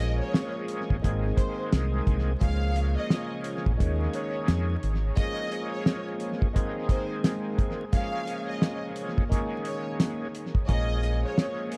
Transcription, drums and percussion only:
0.00 closed hi-hat
0.34 snare, closed hi-hat
0.68 closed hi-hat
0.90 kick
1.04 kick, closed hi-hat
1.37 kick, closed hi-hat
1.72 snare, closed hi-hat
2.07 kick, closed hi-hat
2.41 kick, closed hi-hat
2.76 closed hi-hat
3.10 snare, closed hi-hat
3.44 closed hi-hat
3.66 kick
3.80 kick, closed hi-hat
4.13 closed hi-hat
4.48 snare, closed hi-hat
4.83 closed hi-hat
5.17 kick, closed hi-hat
5.52 closed hi-hat
5.86 snare, closed hi-hat
6.20 closed hi-hat
6.42 kick
6.56 kick, closed hi-hat
6.89 kick, closed hi-hat
7.24 snare, closed hi-hat
7.58 kick, closed hi-hat
7.93 kick, closed hi-hat
8.28 closed hi-hat
8.62 snare, closed hi-hat
8.96 closed hi-hat
9.18 kick
9.32 kick, closed hi-hat
9.65 closed hi-hat
10.00 snare, closed hi-hat
10.35 closed hi-hat
10.55 kick
10.69 kick, closed hi-hat
11.03 closed hi-hat
11.38 snare, closed hi-hat
11.72 closed hi-hat

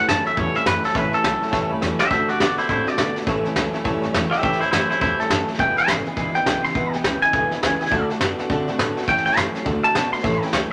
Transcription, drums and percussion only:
0.09 snare, hi-hat pedal
0.26 snare
0.37 kick, snare
0.55 snare
0.66 snare, hi-hat pedal
0.84 snare
0.90 snare
0.95 kick, snare
1.13 snare
1.24 snare, hi-hat pedal
1.42 snare
1.48 snare
1.53 kick, snare
1.82 snare, hi-hat pedal
1.99 snare
2.11 kick, snare
2.29 snare
2.40 snare, hi-hat pedal
2.58 snare
2.64 snare
2.69 kick, snare
2.87 snare
2.98 snare, hi-hat pedal
3.16 snare
3.22 snare
3.27 kick, snare
3.45 snare
3.56 snare, hi-hat pedal
3.74 snare
3.85 kick, snare
4.03 snare
4.14 snare, hi-hat pedal
4.32 snare
4.38 snare
4.43 kick, snare
4.52 snare
4.61 snare
4.73 snare, hi-hat pedal
4.91 snare
5.01 kick, snare
5.20 snare
5.30 snare, hi-hat pedal
5.48 snare
5.54 snare
5.59 kick, snare
5.77 snare
5.83 snare
5.88 snare, hi-hat pedal
6.05 snare
6.16 kick, snare
6.35 snare
6.46 snare, hi-hat pedal
6.64 snare
6.70 snare
6.75 kick, snare
6.93 snare
7.04 snare, hi-hat pedal
7.22 snare
7.33 kick, snare
7.51 snare
7.63 snare, hi-hat pedal
7.81 snare
7.86 snare
7.92 kick, snare
8.10 snare
8.21 snare, hi-hat pedal
8.39 snare
8.50 kick, snare
8.68 snare
8.79 snare, hi-hat pedal
8.97 snare
9.02 snare
9.08 kick, snare
9.17 snare
9.26 snare
9.32 snare
9.37 snare, hi-hat pedal
9.55 snare
9.66 kick, snare
9.84 snare
9.95 snare, hi-hat pedal
10.13 snare
10.19 snare
10.24 kick, snare
10.34 snare
10.42 snare
10.48 snare
10.53 snare, hi-hat pedal

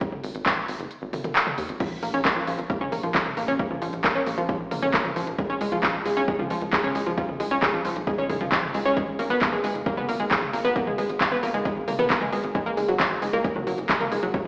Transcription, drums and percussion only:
0.01 kick, closed hi-hat
0.12 mid tom
0.24 open hi-hat
0.35 closed hi-hat
0.46 kick, clap, closed hi-hat
0.68 open hi-hat
0.80 closed hi-hat
0.91 closed hi-hat
1.13 open hi-hat, mid tom
1.24 closed hi-hat, mid tom
1.36 clap, closed hi-hat
1.47 mid tom
1.58 open hi-hat
1.69 closed hi-hat
1.80 kick, closed hi-hat, crash
2.03 open hi-hat
2.14 closed hi-hat
2.25 kick, clap, closed hi-hat
2.47 open hi-hat
2.59 closed hi-hat
2.70 kick, closed hi-hat
2.81 mid tom
2.92 open hi-hat
3.03 closed hi-hat
3.15 kick, clap, closed hi-hat
3.26 mid tom
3.37 open hi-hat
3.48 closed hi-hat
3.59 kick, closed hi-hat
3.71 mid tom
3.82 open hi-hat
3.93 closed hi-hat
4.04 kick, clap, closed hi-hat
4.27 open hi-hat
4.38 closed hi-hat
4.49 kick, closed hi-hat
4.71 open hi-hat, mid tom
4.83 closed hi-hat, mid tom
4.94 kick, clap, closed hi-hat
5.05 mid tom
5.16 open hi-hat
5.27 closed hi-hat
5.38 kick, closed hi-hat
5.61 open hi-hat
5.72 closed hi-hat
5.83 kick, clap, closed hi-hat
6.06 open hi-hat
6.17 closed hi-hat
6.28 kick, closed hi-hat
6.39 mid tom
6.50 open hi-hat
6.62 closed hi-hat
6.73 kick, clap, closed hi-hat
6.84 mid tom
6.95 open hi-hat
7.06 closed hi-hat
7.18 kick, closed hi-hat
7.29 mid tom
7.40 open hi-hat
7.51 closed hi-hat
7.62 kick, clap, closed hi-hat
7.85 open hi-hat
7.96 closed hi-hat
8.07 kick, closed hi-hat
8.30 kick, open hi-hat, mid tom
8.41 closed hi-hat, mid tom
8.52 kick, clap, closed hi-hat
8.63 mid tom
8.74 open hi-hat
8.86 closed hi-hat
8.97 kick, closed hi-hat
9.19 open hi-hat
9.30 closed hi-hat
9.41 kick, clap, closed hi-hat
9.64 open hi-hat
9.75 closed hi-hat
9.86 kick, closed hi-hat
9.97 mid tom
10.09 open hi-hat
10.20 closed hi-hat
10.31 kick, clap, closed hi-hat
10.42 mid tom
10.53 open hi-hat
10.65 closed hi-hat
10.76 kick, closed hi-hat
10.87 mid tom
10.98 open hi-hat
11.09 closed hi-hat
11.21 kick, clap, closed hi-hat
11.43 open hi-hat
11.54 closed hi-hat
11.65 kick, closed hi-hat
11.88 open hi-hat, mid tom
11.99 closed hi-hat, mid tom
12.10 kick, clap, closed hi-hat
12.21 mid tom
12.33 open hi-hat
12.44 closed hi-hat
12.55 kick, closed hi-hat
12.77 open hi-hat
12.89 closed hi-hat
13.00 kick, clap, closed hi-hat
13.22 open hi-hat
13.33 closed hi-hat
13.44 kick, closed hi-hat
13.56 mid tom
13.67 open hi-hat
13.78 closed hi-hat
13.89 kick, clap, closed hi-hat
14.00 mid tom
14.12 open hi-hat
14.23 closed hi-hat
14.34 kick, closed hi-hat

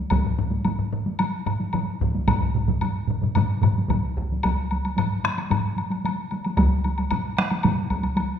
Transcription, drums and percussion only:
0.10 taiko, taiko low-mid, taiko high, high woodblock
0.25 taiko low-mid
0.39 taiko low-mid
0.51 taiko high
0.65 taiko low-mid, taiko high, high woodblock
0.79 taiko low-mid
0.93 taiko low-mid
1.06 taiko high
1.19 taiko high, high woodblock
1.46 taiko low-mid, high woodblock
1.60 taiko high
1.73 taiko low-mid, taiko high, high woodblock
2.01 taiko, taiko low-mid
2.15 taiko high
2.28 taiko, taiko low-mid, taiko mid, taiko high, high woodblock
2.41 taiko low-mid, taiko mid
2.54 taiko low-mid, taiko mid
2.68 taiko low-mid, taiko mid, taiko high
2.81 taiko low-mid, taiko mid, taiko high, high woodblock
3.08 taiko low-mid, taiko mid
3.22 taiko low-mid, taiko mid, taiko high
3.35 taiko low-mid, taiko mid, taiko high, high woodblock
3.62 taiko low-mid, taiko mid, taiko high, high woodblock
3.78 taiko high
3.88 taiko, taiko low-mid, taiko mid, taiko high, high woodblock
4.17 taiko
4.32 taiko high
4.43 taiko, taiko high, high woodblock
4.71 taiko high, high woodblock
4.85 taiko high, high woodblock
4.98 taiko low-mid, taiko high, high woodblock
5.24 taiko rim, taiko high, high woodblock
5.38 taiko high, high woodblock
5.50 taiko low-mid, taiko high, high woodblock
5.77 taiko high, high woodblock
5.90 taiko high, high woodblock
6.05 taiko high, high woodblock
6.31 taiko high, high woodblock
6.45 taiko high, high woodblock
6.57 taiko, taiko high, high woodblock
6.84 taiko high, high woodblock
6.98 taiko high, high woodblock
7.11 taiko mid, taiko high, high woodblock
7.37 taiko rim, taiko high, high woodblock
7.50 taiko high, high woodblock
7.63 taiko mid, taiko high, high woodblock
7.90 taiko, taiko high, high woodblock
8.03 taiko high, high woodblock
8.16 taiko high, high woodblock

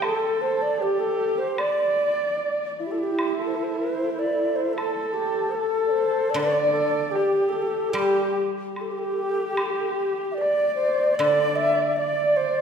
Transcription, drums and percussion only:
0.02 high woodblock
1.58 high woodblock
3.19 high woodblock
4.78 high woodblock
6.36 high woodblock
7.95 high woodblock
8.76 high woodblock
9.57 high woodblock
11.20 high woodblock

